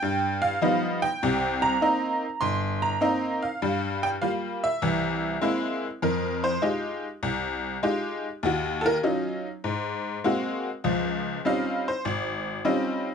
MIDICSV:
0, 0, Header, 1, 2, 480
1, 0, Start_track
1, 0, Key_signature, -4, "minor"
1, 0, Tempo, 601805
1, 960, Time_signature, 4, 2, 24, 8
1, 10485, End_track
2, 0, Start_track
2, 0, Title_t, "Honky-tonk piano"
2, 0, Program_c, 0, 3
2, 0, Note_on_c, 0, 79, 105
2, 20, Note_on_c, 0, 43, 66
2, 333, Note_on_c, 0, 77, 104
2, 345, Note_off_c, 0, 79, 0
2, 428, Note_off_c, 0, 43, 0
2, 490, Note_on_c, 0, 53, 55
2, 496, Note_on_c, 0, 55, 49
2, 497, Note_on_c, 0, 63, 63
2, 498, Note_on_c, 0, 59, 52
2, 778, Note_off_c, 0, 77, 0
2, 816, Note_on_c, 0, 79, 87
2, 827, Note_off_c, 0, 53, 0
2, 830, Note_off_c, 0, 55, 0
2, 831, Note_off_c, 0, 59, 0
2, 831, Note_off_c, 0, 63, 0
2, 980, Note_on_c, 0, 48, 60
2, 981, Note_on_c, 0, 36, 73
2, 1293, Note_on_c, 0, 82, 103
2, 1305, Note_off_c, 0, 79, 0
2, 1388, Note_off_c, 0, 48, 0
2, 1389, Note_off_c, 0, 36, 0
2, 1445, Note_on_c, 0, 58, 51
2, 1450, Note_on_c, 0, 60, 47
2, 1453, Note_on_c, 0, 63, 56
2, 1784, Note_off_c, 0, 58, 0
2, 1787, Note_off_c, 0, 60, 0
2, 1788, Note_off_c, 0, 63, 0
2, 1919, Note_on_c, 0, 84, 91
2, 1925, Note_on_c, 0, 31, 75
2, 1940, Note_off_c, 0, 82, 0
2, 2223, Note_off_c, 0, 84, 0
2, 2251, Note_on_c, 0, 82, 84
2, 2339, Note_off_c, 0, 31, 0
2, 2400, Note_on_c, 0, 58, 58
2, 2403, Note_on_c, 0, 60, 56
2, 2407, Note_on_c, 0, 63, 65
2, 2732, Note_on_c, 0, 77, 63
2, 2742, Note_off_c, 0, 58, 0
2, 2742, Note_off_c, 0, 82, 0
2, 2743, Note_off_c, 0, 60, 0
2, 2745, Note_off_c, 0, 63, 0
2, 2888, Note_on_c, 0, 43, 66
2, 2889, Note_on_c, 0, 55, 67
2, 3176, Note_off_c, 0, 77, 0
2, 3215, Note_on_c, 0, 79, 83
2, 3255, Note_off_c, 0, 79, 0
2, 3301, Note_off_c, 0, 43, 0
2, 3302, Note_off_c, 0, 55, 0
2, 3362, Note_on_c, 0, 77, 80
2, 3365, Note_on_c, 0, 55, 51
2, 3365, Note_on_c, 0, 58, 46
2, 3371, Note_on_c, 0, 65, 57
2, 3436, Note_off_c, 0, 77, 0
2, 3698, Note_on_c, 0, 76, 91
2, 3704, Note_off_c, 0, 55, 0
2, 3704, Note_off_c, 0, 58, 0
2, 3707, Note_off_c, 0, 65, 0
2, 3844, Note_on_c, 0, 52, 65
2, 3847, Note_on_c, 0, 36, 69
2, 4259, Note_off_c, 0, 52, 0
2, 4261, Note_off_c, 0, 36, 0
2, 4319, Note_on_c, 0, 56, 55
2, 4321, Note_on_c, 0, 58, 48
2, 4323, Note_on_c, 0, 60, 48
2, 4326, Note_on_c, 0, 64, 64
2, 4620, Note_off_c, 0, 76, 0
2, 4661, Note_off_c, 0, 56, 0
2, 4662, Note_off_c, 0, 58, 0
2, 4663, Note_off_c, 0, 60, 0
2, 4665, Note_off_c, 0, 64, 0
2, 4805, Note_on_c, 0, 41, 60
2, 4809, Note_on_c, 0, 70, 71
2, 5122, Note_off_c, 0, 70, 0
2, 5135, Note_on_c, 0, 72, 78
2, 5220, Note_off_c, 0, 41, 0
2, 5279, Note_off_c, 0, 72, 0
2, 5279, Note_on_c, 0, 56, 43
2, 5281, Note_on_c, 0, 63, 43
2, 5284, Note_on_c, 0, 65, 43
2, 5286, Note_on_c, 0, 67, 47
2, 5622, Note_off_c, 0, 56, 0
2, 5623, Note_off_c, 0, 63, 0
2, 5624, Note_off_c, 0, 65, 0
2, 5626, Note_off_c, 0, 67, 0
2, 5764, Note_on_c, 0, 36, 68
2, 6181, Note_off_c, 0, 36, 0
2, 6243, Note_on_c, 0, 56, 48
2, 6247, Note_on_c, 0, 63, 46
2, 6248, Note_on_c, 0, 65, 48
2, 6250, Note_on_c, 0, 67, 55
2, 6585, Note_off_c, 0, 56, 0
2, 6587, Note_off_c, 0, 63, 0
2, 6587, Note_off_c, 0, 65, 0
2, 6588, Note_off_c, 0, 67, 0
2, 6724, Note_on_c, 0, 39, 64
2, 6745, Note_on_c, 0, 66, 58
2, 7028, Note_on_c, 0, 69, 67
2, 7047, Note_off_c, 0, 69, 0
2, 7051, Note_off_c, 0, 66, 0
2, 7064, Note_on_c, 0, 70, 92
2, 7141, Note_off_c, 0, 39, 0
2, 7151, Note_off_c, 0, 70, 0
2, 7206, Note_on_c, 0, 54, 48
2, 7206, Note_on_c, 0, 61, 38
2, 7210, Note_on_c, 0, 63, 46
2, 7210, Note_on_c, 0, 65, 50
2, 7547, Note_off_c, 0, 54, 0
2, 7547, Note_off_c, 0, 61, 0
2, 7549, Note_off_c, 0, 63, 0
2, 7549, Note_off_c, 0, 65, 0
2, 7689, Note_on_c, 0, 44, 56
2, 8104, Note_off_c, 0, 44, 0
2, 8170, Note_on_c, 0, 56, 55
2, 8171, Note_on_c, 0, 58, 52
2, 8176, Note_on_c, 0, 60, 47
2, 8178, Note_on_c, 0, 66, 57
2, 8509, Note_off_c, 0, 56, 0
2, 8510, Note_off_c, 0, 58, 0
2, 8513, Note_off_c, 0, 60, 0
2, 8514, Note_off_c, 0, 66, 0
2, 8646, Note_on_c, 0, 53, 64
2, 8648, Note_on_c, 0, 37, 62
2, 9063, Note_off_c, 0, 53, 0
2, 9065, Note_off_c, 0, 37, 0
2, 9132, Note_on_c, 0, 55, 44
2, 9134, Note_on_c, 0, 60, 43
2, 9138, Note_on_c, 0, 61, 45
2, 9140, Note_on_c, 0, 63, 45
2, 9141, Note_on_c, 0, 65, 54
2, 9146, Note_on_c, 0, 77, 80
2, 9453, Note_off_c, 0, 77, 0
2, 9471, Note_off_c, 0, 55, 0
2, 9472, Note_off_c, 0, 60, 0
2, 9474, Note_off_c, 0, 61, 0
2, 9475, Note_off_c, 0, 63, 0
2, 9475, Note_off_c, 0, 65, 0
2, 9475, Note_on_c, 0, 72, 62
2, 9612, Note_off_c, 0, 72, 0
2, 9612, Note_on_c, 0, 32, 67
2, 10027, Note_off_c, 0, 32, 0
2, 10086, Note_on_c, 0, 55, 52
2, 10088, Note_on_c, 0, 61, 47
2, 10089, Note_on_c, 0, 60, 52
2, 10092, Note_on_c, 0, 63, 51
2, 10094, Note_on_c, 0, 65, 57
2, 10429, Note_off_c, 0, 55, 0
2, 10430, Note_off_c, 0, 60, 0
2, 10430, Note_off_c, 0, 61, 0
2, 10432, Note_off_c, 0, 63, 0
2, 10433, Note_off_c, 0, 65, 0
2, 10485, End_track
0, 0, End_of_file